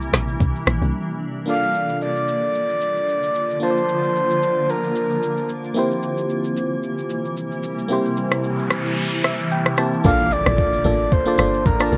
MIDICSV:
0, 0, Header, 1, 8, 480
1, 0, Start_track
1, 0, Tempo, 535714
1, 1322, Time_signature, 4, 2, 24, 8
1, 10730, End_track
2, 0, Start_track
2, 0, Title_t, "Soft synth lead"
2, 0, Program_c, 0, 80
2, 1326, Note_on_c, 0, 77, 117
2, 1770, Note_off_c, 0, 77, 0
2, 1812, Note_on_c, 0, 74, 105
2, 3211, Note_off_c, 0, 74, 0
2, 3251, Note_on_c, 0, 72, 104
2, 4212, Note_on_c, 0, 70, 83
2, 4225, Note_off_c, 0, 72, 0
2, 4927, Note_off_c, 0, 70, 0
2, 9009, Note_on_c, 0, 77, 117
2, 9248, Note_on_c, 0, 74, 110
2, 9262, Note_off_c, 0, 77, 0
2, 9969, Note_on_c, 0, 72, 99
2, 9983, Note_off_c, 0, 74, 0
2, 10443, Note_off_c, 0, 72, 0
2, 10448, Note_on_c, 0, 70, 92
2, 10730, Note_off_c, 0, 70, 0
2, 10730, End_track
3, 0, Start_track
3, 0, Title_t, "FM electric piano"
3, 0, Program_c, 1, 5
3, 1305, Note_on_c, 1, 58, 63
3, 1315, Note_on_c, 1, 62, 55
3, 1325, Note_on_c, 1, 65, 57
3, 1336, Note_on_c, 1, 69, 60
3, 1344, Note_on_c, 1, 74, 72
3, 1481, Control_c, 1, 64, 127
3, 3198, Note_off_c, 1, 58, 0
3, 3203, Note_off_c, 1, 62, 0
3, 3208, Note_off_c, 1, 65, 0
3, 3213, Note_off_c, 1, 69, 0
3, 3217, Note_off_c, 1, 74, 0
3, 3224, Note_on_c, 1, 58, 64
3, 3235, Note_on_c, 1, 62, 57
3, 3244, Note_on_c, 1, 65, 57
3, 3254, Note_on_c, 1, 81, 57
3, 3264, Note_on_c, 1, 72, 57
3, 3317, Note_off_c, 1, 72, 0
3, 3321, Note_on_c, 1, 74, 71
3, 5117, Note_off_c, 1, 58, 0
3, 5123, Note_off_c, 1, 62, 0
3, 5127, Note_off_c, 1, 65, 0
3, 5132, Note_off_c, 1, 81, 0
3, 5145, Note_on_c, 1, 58, 78
3, 5155, Note_on_c, 1, 60, 69
3, 5165, Note_on_c, 1, 64, 72
3, 5166, Note_off_c, 1, 74, 0
3, 5172, Control_c, 1, 64, 0
3, 5175, Note_on_c, 1, 67, 69
3, 5185, Note_on_c, 1, 72, 84
3, 5311, Control_c, 1, 64, 127
3, 7038, Note_off_c, 1, 58, 0
3, 7043, Note_off_c, 1, 60, 0
3, 7048, Note_off_c, 1, 64, 0
3, 7053, Note_off_c, 1, 67, 0
3, 7057, Note_off_c, 1, 72, 0
3, 7063, Note_on_c, 1, 58, 75
3, 7073, Note_on_c, 1, 60, 68
3, 7084, Note_on_c, 1, 64, 73
3, 7093, Note_on_c, 1, 67, 71
3, 7103, Note_on_c, 1, 72, 84
3, 8285, Note_on_c, 1, 76, 72
3, 8507, Note_off_c, 1, 76, 0
3, 8527, Note_on_c, 1, 79, 73
3, 8719, Note_off_c, 1, 58, 0
3, 8724, Note_off_c, 1, 60, 0
3, 8729, Note_off_c, 1, 64, 0
3, 8734, Note_off_c, 1, 67, 0
3, 8739, Note_off_c, 1, 72, 0
3, 8748, Note_off_c, 1, 79, 0
3, 8754, Note_on_c, 1, 58, 57
3, 8760, Note_on_c, 1, 60, 53
3, 8764, Note_on_c, 1, 81, 71
3, 8765, Note_on_c, 1, 64, 51
3, 8770, Note_on_c, 1, 67, 50
3, 8774, Note_on_c, 1, 72, 61
3, 8984, Note_off_c, 1, 58, 0
3, 8987, Note_off_c, 1, 81, 0
3, 8995, Note_on_c, 1, 58, 74
3, 9001, Note_off_c, 1, 60, 0
3, 9001, Note_on_c, 1, 62, 69
3, 9004, Note_off_c, 1, 64, 0
3, 9006, Note_off_c, 1, 67, 0
3, 9006, Note_on_c, 1, 65, 69
3, 9008, Note_off_c, 1, 72, 0
3, 9010, Note_on_c, 1, 69, 70
3, 9012, Control_c, 1, 64, 0
3, 9016, Note_on_c, 1, 74, 82
3, 9176, Control_c, 1, 64, 127
3, 9584, Note_off_c, 1, 58, 0
3, 9587, Note_off_c, 1, 62, 0
3, 9589, Note_off_c, 1, 65, 0
3, 9592, Note_off_c, 1, 69, 0
3, 9594, Note_off_c, 1, 74, 0
3, 9715, Note_on_c, 1, 58, 74
3, 9719, Note_on_c, 1, 62, 71
3, 9724, Note_on_c, 1, 65, 69
3, 9728, Note_on_c, 1, 69, 68
3, 9734, Note_on_c, 1, 74, 82
3, 10011, Note_off_c, 1, 58, 0
3, 10013, Note_off_c, 1, 62, 0
3, 10016, Note_off_c, 1, 65, 0
3, 10018, Note_off_c, 1, 69, 0
3, 10021, Note_off_c, 1, 74, 0
3, 10085, Note_on_c, 1, 58, 77
3, 10090, Note_on_c, 1, 62, 71
3, 10094, Note_on_c, 1, 65, 73
3, 10100, Note_on_c, 1, 69, 75
3, 10105, Note_on_c, 1, 74, 88
3, 10176, Note_off_c, 1, 58, 0
3, 10179, Note_off_c, 1, 62, 0
3, 10180, Note_off_c, 1, 65, 0
3, 10183, Note_off_c, 1, 69, 0
3, 10186, Note_off_c, 1, 74, 0
3, 10196, Note_on_c, 1, 58, 78
3, 10200, Note_on_c, 1, 62, 69
3, 10205, Note_on_c, 1, 65, 70
3, 10210, Note_on_c, 1, 69, 69
3, 10215, Note_on_c, 1, 74, 83
3, 10492, Note_off_c, 1, 58, 0
3, 10494, Note_off_c, 1, 62, 0
3, 10496, Note_off_c, 1, 65, 0
3, 10499, Note_off_c, 1, 69, 0
3, 10502, Note_off_c, 1, 74, 0
3, 10569, Note_on_c, 1, 58, 74
3, 10573, Note_on_c, 1, 62, 69
3, 10579, Note_on_c, 1, 65, 69
3, 10583, Note_on_c, 1, 81, 70
3, 10588, Note_on_c, 1, 74, 87
3, 10730, Note_off_c, 1, 58, 0
3, 10730, Note_off_c, 1, 62, 0
3, 10730, Note_off_c, 1, 65, 0
3, 10730, Note_off_c, 1, 74, 0
3, 10730, Note_off_c, 1, 81, 0
3, 10730, End_track
4, 0, Start_track
4, 0, Title_t, "Ambient pad"
4, 0, Program_c, 2, 92
4, 0, Note_on_c, 2, 48, 83
4, 0, Note_on_c, 2, 52, 76
4, 0, Note_on_c, 2, 55, 77
4, 0, Note_on_c, 2, 58, 77
4, 0, Note_on_c, 2, 62, 89
4, 1285, Note_off_c, 2, 55, 0
4, 1286, Note_off_c, 2, 48, 0
4, 1286, Note_off_c, 2, 52, 0
4, 1286, Note_off_c, 2, 58, 0
4, 1302, Note_off_c, 2, 62, 0
4, 1319, Note_on_c, 2, 50, 79
4, 1319, Note_on_c, 2, 58, 72
4, 1319, Note_on_c, 2, 65, 87
4, 1321, Note_on_c, 2, 53, 70
4, 5125, Note_off_c, 2, 50, 0
4, 5125, Note_off_c, 2, 65, 0
4, 5126, Note_off_c, 2, 53, 0
4, 5165, Note_on_c, 2, 55, 70
4, 5166, Note_on_c, 2, 64, 83
4, 5168, Note_on_c, 2, 48, 80
4, 5168, Note_on_c, 2, 52, 73
4, 8965, Note_off_c, 2, 58, 0
4, 8968, Note_off_c, 2, 55, 0
4, 8968, Note_off_c, 2, 64, 0
4, 8969, Note_off_c, 2, 48, 0
4, 8969, Note_off_c, 2, 52, 0
4, 9002, Note_on_c, 2, 50, 83
4, 9002, Note_on_c, 2, 58, 78
4, 9002, Note_on_c, 2, 65, 91
4, 9003, Note_on_c, 2, 53, 74
4, 10730, Note_off_c, 2, 50, 0
4, 10730, Note_off_c, 2, 53, 0
4, 10730, Note_off_c, 2, 58, 0
4, 10730, Note_off_c, 2, 65, 0
4, 10730, End_track
5, 0, Start_track
5, 0, Title_t, "Log drum bass"
5, 0, Program_c, 3, 39
5, 119, Note_on_c, 3, 34, 97
5, 333, Note_off_c, 3, 34, 0
5, 362, Note_on_c, 3, 36, 89
5, 479, Note_off_c, 3, 36, 0
5, 601, Note_on_c, 3, 34, 95
5, 719, Note_off_c, 3, 34, 0
5, 732, Note_on_c, 3, 36, 87
5, 829, Note_off_c, 3, 36, 0
5, 9003, Note_on_c, 3, 34, 105
5, 9332, Note_off_c, 3, 34, 0
5, 9374, Note_on_c, 3, 34, 99
5, 9683, Note_off_c, 3, 34, 0
5, 9723, Note_on_c, 3, 33, 102
5, 10052, Note_off_c, 3, 33, 0
5, 10202, Note_on_c, 3, 31, 88
5, 10415, Note_off_c, 3, 31, 0
5, 10445, Note_on_c, 3, 33, 98
5, 10657, Note_off_c, 3, 33, 0
5, 10681, Note_on_c, 3, 34, 99
5, 10730, Note_off_c, 3, 34, 0
5, 10730, End_track
6, 0, Start_track
6, 0, Title_t, "Impact"
6, 0, Program_c, 4, 103
6, 9002, Note_on_c, 4, 60, 81
6, 10730, Note_off_c, 4, 60, 0
6, 10730, End_track
7, 0, Start_track
7, 0, Title_t, "Noise sweep"
7, 0, Program_c, 5, 103
7, 7081, Note_on_c, 5, 60, 81
7, 9002, Note_off_c, 5, 60, 0
7, 10730, End_track
8, 0, Start_track
8, 0, Title_t, "Drums"
8, 13, Note_on_c, 9, 82, 58
8, 103, Note_off_c, 9, 82, 0
8, 122, Note_on_c, 9, 37, 99
8, 122, Note_on_c, 9, 38, 68
8, 127, Note_on_c, 9, 82, 112
8, 212, Note_off_c, 9, 37, 0
8, 212, Note_off_c, 9, 38, 0
8, 216, Note_off_c, 9, 82, 0
8, 253, Note_on_c, 9, 82, 61
8, 343, Note_off_c, 9, 82, 0
8, 362, Note_on_c, 9, 36, 118
8, 363, Note_on_c, 9, 82, 76
8, 452, Note_off_c, 9, 36, 0
8, 453, Note_off_c, 9, 82, 0
8, 496, Note_on_c, 9, 82, 60
8, 586, Note_off_c, 9, 82, 0
8, 599, Note_on_c, 9, 82, 110
8, 602, Note_on_c, 9, 37, 102
8, 689, Note_off_c, 9, 82, 0
8, 691, Note_off_c, 9, 37, 0
8, 735, Note_on_c, 9, 82, 51
8, 825, Note_off_c, 9, 82, 0
8, 1322, Note_on_c, 9, 82, 71
8, 1411, Note_off_c, 9, 82, 0
8, 1457, Note_on_c, 9, 82, 50
8, 1547, Note_off_c, 9, 82, 0
8, 1561, Note_on_c, 9, 82, 81
8, 1650, Note_off_c, 9, 82, 0
8, 1693, Note_on_c, 9, 82, 55
8, 1783, Note_off_c, 9, 82, 0
8, 1802, Note_on_c, 9, 82, 72
8, 1891, Note_off_c, 9, 82, 0
8, 1934, Note_on_c, 9, 82, 50
8, 2023, Note_off_c, 9, 82, 0
8, 2046, Note_on_c, 9, 82, 102
8, 2136, Note_off_c, 9, 82, 0
8, 2284, Note_on_c, 9, 82, 72
8, 2373, Note_off_c, 9, 82, 0
8, 2417, Note_on_c, 9, 82, 57
8, 2506, Note_off_c, 9, 82, 0
8, 2520, Note_on_c, 9, 82, 102
8, 2609, Note_off_c, 9, 82, 0
8, 2656, Note_on_c, 9, 82, 46
8, 2745, Note_off_c, 9, 82, 0
8, 2764, Note_on_c, 9, 82, 78
8, 2853, Note_off_c, 9, 82, 0
8, 2894, Note_on_c, 9, 82, 59
8, 2984, Note_off_c, 9, 82, 0
8, 3001, Note_on_c, 9, 82, 83
8, 3091, Note_off_c, 9, 82, 0
8, 3137, Note_on_c, 9, 82, 45
8, 3227, Note_off_c, 9, 82, 0
8, 3244, Note_on_c, 9, 82, 69
8, 3333, Note_off_c, 9, 82, 0
8, 3380, Note_on_c, 9, 82, 50
8, 3469, Note_off_c, 9, 82, 0
8, 3483, Note_on_c, 9, 82, 79
8, 3573, Note_off_c, 9, 82, 0
8, 3615, Note_on_c, 9, 82, 52
8, 3705, Note_off_c, 9, 82, 0
8, 3724, Note_on_c, 9, 82, 75
8, 3814, Note_off_c, 9, 82, 0
8, 3855, Note_on_c, 9, 82, 55
8, 3944, Note_off_c, 9, 82, 0
8, 3967, Note_on_c, 9, 82, 99
8, 4057, Note_off_c, 9, 82, 0
8, 4204, Note_on_c, 9, 82, 72
8, 4294, Note_off_c, 9, 82, 0
8, 4337, Note_on_c, 9, 82, 57
8, 4426, Note_off_c, 9, 82, 0
8, 4441, Note_on_c, 9, 82, 99
8, 4530, Note_off_c, 9, 82, 0
8, 4576, Note_on_c, 9, 82, 45
8, 4665, Note_off_c, 9, 82, 0
8, 4683, Note_on_c, 9, 82, 77
8, 4772, Note_off_c, 9, 82, 0
8, 4814, Note_on_c, 9, 82, 57
8, 4903, Note_off_c, 9, 82, 0
8, 4919, Note_on_c, 9, 82, 81
8, 5009, Note_off_c, 9, 82, 0
8, 5056, Note_on_c, 9, 82, 44
8, 5146, Note_off_c, 9, 82, 0
8, 5162, Note_on_c, 9, 82, 68
8, 5251, Note_off_c, 9, 82, 0
8, 5296, Note_on_c, 9, 82, 52
8, 5385, Note_off_c, 9, 82, 0
8, 5400, Note_on_c, 9, 82, 83
8, 5489, Note_off_c, 9, 82, 0
8, 5533, Note_on_c, 9, 82, 56
8, 5623, Note_off_c, 9, 82, 0
8, 5642, Note_on_c, 9, 82, 73
8, 5732, Note_off_c, 9, 82, 0
8, 5773, Note_on_c, 9, 82, 53
8, 5862, Note_off_c, 9, 82, 0
8, 5886, Note_on_c, 9, 82, 104
8, 5975, Note_off_c, 9, 82, 0
8, 6122, Note_on_c, 9, 82, 74
8, 6212, Note_off_c, 9, 82, 0
8, 6257, Note_on_c, 9, 82, 56
8, 6346, Note_off_c, 9, 82, 0
8, 6360, Note_on_c, 9, 82, 97
8, 6449, Note_off_c, 9, 82, 0
8, 6495, Note_on_c, 9, 82, 45
8, 6585, Note_off_c, 9, 82, 0
8, 6603, Note_on_c, 9, 82, 77
8, 6693, Note_off_c, 9, 82, 0
8, 6734, Note_on_c, 9, 82, 58
8, 6824, Note_off_c, 9, 82, 0
8, 6839, Note_on_c, 9, 82, 85
8, 6929, Note_off_c, 9, 82, 0
8, 6975, Note_on_c, 9, 82, 45
8, 7064, Note_off_c, 9, 82, 0
8, 7080, Note_on_c, 9, 82, 72
8, 7169, Note_off_c, 9, 82, 0
8, 7215, Note_on_c, 9, 82, 52
8, 7305, Note_off_c, 9, 82, 0
8, 7318, Note_on_c, 9, 82, 80
8, 7408, Note_off_c, 9, 82, 0
8, 7451, Note_on_c, 9, 37, 88
8, 7451, Note_on_c, 9, 82, 54
8, 7541, Note_off_c, 9, 37, 0
8, 7541, Note_off_c, 9, 82, 0
8, 7561, Note_on_c, 9, 82, 75
8, 7651, Note_off_c, 9, 82, 0
8, 7692, Note_on_c, 9, 82, 54
8, 7781, Note_off_c, 9, 82, 0
8, 7799, Note_on_c, 9, 37, 88
8, 7804, Note_on_c, 9, 82, 101
8, 7889, Note_off_c, 9, 37, 0
8, 7894, Note_off_c, 9, 82, 0
8, 7932, Note_on_c, 9, 82, 54
8, 8021, Note_off_c, 9, 82, 0
8, 8041, Note_on_c, 9, 82, 71
8, 8131, Note_off_c, 9, 82, 0
8, 8176, Note_on_c, 9, 82, 56
8, 8265, Note_off_c, 9, 82, 0
8, 8279, Note_on_c, 9, 82, 101
8, 8282, Note_on_c, 9, 37, 91
8, 8369, Note_off_c, 9, 82, 0
8, 8371, Note_off_c, 9, 37, 0
8, 8416, Note_on_c, 9, 82, 47
8, 8506, Note_off_c, 9, 82, 0
8, 8523, Note_on_c, 9, 82, 80
8, 8613, Note_off_c, 9, 82, 0
8, 8655, Note_on_c, 9, 37, 94
8, 8655, Note_on_c, 9, 82, 56
8, 8745, Note_off_c, 9, 37, 0
8, 8745, Note_off_c, 9, 82, 0
8, 8761, Note_on_c, 9, 37, 93
8, 8761, Note_on_c, 9, 82, 84
8, 8851, Note_off_c, 9, 37, 0
8, 8851, Note_off_c, 9, 82, 0
8, 8897, Note_on_c, 9, 82, 44
8, 8987, Note_off_c, 9, 82, 0
8, 9002, Note_on_c, 9, 36, 109
8, 9003, Note_on_c, 9, 82, 75
8, 9092, Note_off_c, 9, 36, 0
8, 9092, Note_off_c, 9, 82, 0
8, 9137, Note_on_c, 9, 82, 55
8, 9227, Note_off_c, 9, 82, 0
8, 9241, Note_on_c, 9, 82, 86
8, 9331, Note_off_c, 9, 82, 0
8, 9375, Note_on_c, 9, 37, 91
8, 9375, Note_on_c, 9, 82, 57
8, 9464, Note_off_c, 9, 82, 0
8, 9465, Note_off_c, 9, 37, 0
8, 9482, Note_on_c, 9, 36, 90
8, 9484, Note_on_c, 9, 82, 81
8, 9572, Note_off_c, 9, 36, 0
8, 9573, Note_off_c, 9, 82, 0
8, 9614, Note_on_c, 9, 82, 57
8, 9703, Note_off_c, 9, 82, 0
8, 9727, Note_on_c, 9, 82, 106
8, 9816, Note_off_c, 9, 82, 0
8, 9963, Note_on_c, 9, 36, 117
8, 9965, Note_on_c, 9, 82, 76
8, 10053, Note_off_c, 9, 36, 0
8, 10054, Note_off_c, 9, 82, 0
8, 10099, Note_on_c, 9, 82, 61
8, 10188, Note_off_c, 9, 82, 0
8, 10202, Note_on_c, 9, 82, 102
8, 10205, Note_on_c, 9, 37, 94
8, 10292, Note_off_c, 9, 82, 0
8, 10294, Note_off_c, 9, 37, 0
8, 10338, Note_on_c, 9, 82, 50
8, 10427, Note_off_c, 9, 82, 0
8, 10446, Note_on_c, 9, 36, 101
8, 10446, Note_on_c, 9, 82, 83
8, 10535, Note_off_c, 9, 82, 0
8, 10536, Note_off_c, 9, 36, 0
8, 10577, Note_on_c, 9, 37, 94
8, 10577, Note_on_c, 9, 82, 59
8, 10667, Note_off_c, 9, 37, 0
8, 10667, Note_off_c, 9, 82, 0
8, 10683, Note_on_c, 9, 82, 86
8, 10730, Note_off_c, 9, 82, 0
8, 10730, End_track
0, 0, End_of_file